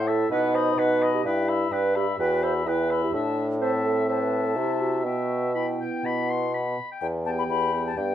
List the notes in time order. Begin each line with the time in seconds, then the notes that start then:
Already playing: A2 E4
0.07 A4 E5 A5
0.31 B2 D#4 B4 F#5
0.54 C5 D#5 B5
0.71 C5
0.77 B2 B4 F#5
1.02 D#5 B5
1.14 G4
1.25 G2 E4 B4 G5
1.48 E5 B5
1.72 G2 G4 B4 G5
1.96 G4 E5 B5
2.19 E2 F#4 B4 G5
2.43 C5 E5 B5
2.66 E2 E4 B4 G5
2.91 E5 B5
3.03 G4
3.14 A2 D4 E5 A5
3.61 C4 C5 E5 A5
3.85 A4
4.08 C5 E5 A5
4.21 B4
4.45 A4
4.56 C3 E4 G4
4.81 F#4
5.05 B2 B3 F#4 E5 G5
5.55 E4 G5 B5
5.80 G5
6.04 B2 F#5 B5
6.30 C6
6.54 B5
6.91 G5
7.01 E2 G5
7.25 B3 G4 G5 A5
7.38 B5
7.50 E2 B5
7.73 B3 G4 G5
7.87 A5
7.96 G2 B3 G4 G5